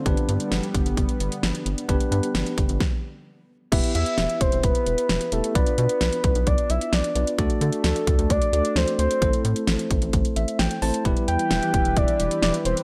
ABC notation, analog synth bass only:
X:1
M:4/4
L:1/16
Q:1/4=131
K:Ephr
V:1 name="Analog synth bass" clef=bass
G,,, z G,, z G,,, z G,,, G,,, G,,, z G,,, z G,,, z G,,, z | G,,, z G,, z G,,, z G,,, G,,, z8 | E,,, z E,, z E,,, z E,,, E,,, E,,, z E,,, z E,,, z E,,, z | B,,, z B,, z B,,, z B,,, B,,, B,,, z B,,, z B,,, z B,,, z |
D,, z D, z D,, z D,, D,, D,, z D,, z D,, z D,, z | A,,, z A,, z A,,, z A,,, A,,, A,,, z A,,, z A,,, z A,,, z | E,,, z E,, z E,,, z E,,, E,,, E,,, z E,,, z E,,, z E,,, z |]